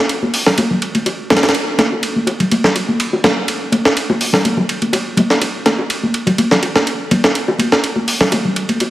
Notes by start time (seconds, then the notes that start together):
0.09 ride
0.22 high bongo, high conga
0.34 open hi-hat
0.46 snare, low conga
0.58 ride, high bongo, high conga
0.71 low conga
0.82 ride
0.95 ride, high conga
1.06 ride, high bongo
1.30 snare, ride, high conga, low conga
1.37 snare, ride
1.43 snare, ride, high bongo
1.49 snare, ride
1.54 ride
1.78 snare, ride, high conga
1.92 high bongo
2.03 ride
2.16 high conga
2.27 ride, high bongo
2.40 ride, low conga
2.51 ride, high conga
2.64 snare, low conga
2.75 ride, high bongo
2.88 high conga
3.00 ride
3.13 high bongo
3.24 snare, ride, high conga, low conga
3.48 ride
3.72 ride, high bongo, high conga
3.85 snare
3.97 ride
4.09 high bongo, high conga
4.21 open hi-hat
4.33 snare, low conga
4.45 ride, high conga
4.57 high bongo, low conga
4.69 ride
4.82 ride, high conga
4.93 ride, high bongo
5.17 ride, high conga, low conga
5.30 snare
5.41 ride, high bongo
5.66 snare, ride, high conga
5.78 high bongo
5.90 ride
6.03 high conga
6.14 ride
6.27 ride, high bongo, low conga
6.38 ride, high conga
6.51 snare, low conga
6.62 ride, high bongo
6.76 snare, high conga
6.87 ride
7.11 ride, high bongo, high conga, low conga
7.24 snare
7.35 ride
7.48 high bongo
7.59 ride, high conga
7.72 snare
7.84 ride
7.96 high bongo, high conga
8.08 open hi-hat
8.21 snare, low conga
8.32 ride, high bongo, high conga
8.45 low conga
8.56 ride
8.69 ride, high conga
8.80 ride, high bongo